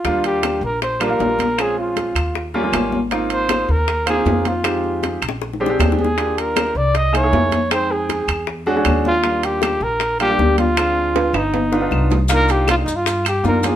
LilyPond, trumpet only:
\new Staff \with { instrumentName = "Trumpet" } { \time 4/4 \key ees \major \tempo 4 = 157 f'8 g'4 bes'8 c''8 bes'4. | aes'8 f'2 r4. | r8 c''4 bes'4 aes'4 f'8~ | f'4. r2 aes'8~ |
aes'8 bes'4 d''8 dis''8 des''4. | c''8 aes'2 r4 f'8~ | f'8 g'4 bes'4 g'4 f'8~ | f'4. ees'2 r8 |
\key c \minor bes'8 g'8 \tuplet 3/2 { f'8 ees'8 f'8~ } f'8 g'8 bes'8 aes'8 | }